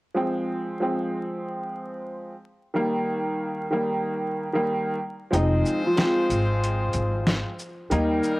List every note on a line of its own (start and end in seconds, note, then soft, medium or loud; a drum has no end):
0.14 0.76 F3 medium
0.14 0.76 G#3 medium
0.14 0.77 C4 loud
0.80 2.32 F3 medium
0.80 2.32 G#3 medium
0.80 2.33 C4 medium
2.74 3.65 D#3 medium
2.74 3.65 G3 medium
2.74 3.66 A#3 loud
3.71 4.47 D#3 medium
3.71 4.48 G3 medium
3.71 4.48 A#3 loud
4.53 4.96 D#3 medium
4.53 4.97 G3 medium
4.53 4.97 A#3 loud
5.31 5.61 F1 loud
5.31 5.92 F3 medium
5.31 5.93 G#3 medium
5.31 7.55 G#3 medium
5.31 5.93 C4 loud
5.31 5.82 D#4 loud
5.31 7.55 F4 medium
5.31 7.55 C5 loud
5.31 closed hi-hat medium
5.35 5.83 D#5 medium
5.65 shaker medium
5.86 7.88 F3 medium
5.86 7.88 F4 medium
5.96 7.48 F3 medium
5.96 7.48 G#3 medium
5.96 7.49 C4 loud
5.96 snare loud
5.96 closed hi-hat medium
6.30 6.86 G#1 loud
6.30 closed hi-hat medium
6.30 shaker medium
6.64 closed hi-hat medium
6.93 7.40 G#1 medium
6.93 closed hi-hat medium
6.93 shaker medium
7.27 snare loud
7.27 closed hi-hat medium
7.59 shaker soft
7.90 8.19 D#2 loud
7.90 8.40 D#3 medium
7.90 8.40 G3 medium
7.90 8.40 A#3 loud
7.90 8.40 D#4 medium
7.90 8.40 D#4 loud
7.90 8.40 A#4 loud
7.90 8.40 D#5 medium
7.90 closed hi-hat medium
8.23 shaker medium